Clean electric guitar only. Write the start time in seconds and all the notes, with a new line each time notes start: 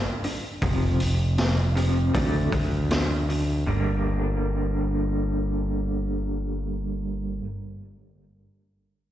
Already playing: G2 D3
0.24 G2 D3
0.62 F2 C3 F3
1.00 F2 C3
1.38 F2 C3
1.76 F2 C3 F3
2.14 D3 F#3 A3
2.53 D3 F#3
2.91 D3 F#3
3.29 D3 F#3
3.67 G2 D3 G3 A#3 D4